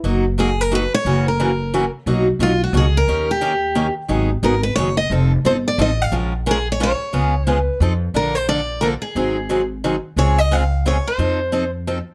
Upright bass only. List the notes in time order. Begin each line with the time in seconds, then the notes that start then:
0.04 F#1
1.05 F#1
2.06 B1
2.39 B1
2.73 C#2
3.08 D#2
4.09 G#1
4.43 G#1
4.77 F#1
5.10 F1
5.44 G1
5.78 A1
6.12 A#1
7.14 C#2
7.80 F2
8.14 A#1
9.15 G#1
10.16 C#2
11.18 F2